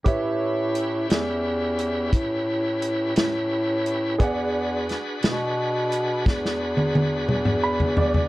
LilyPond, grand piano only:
\new Staff \with { instrumentName = "Grand piano" } { \time 12/8 \key a \mixolydian \tempo 4. = 58 << { r1. | r1 r4 b''8 d''8 | } \\ { <g' b' cis'' e''>1. | <gis' b' d'' fis''>1. | } >> }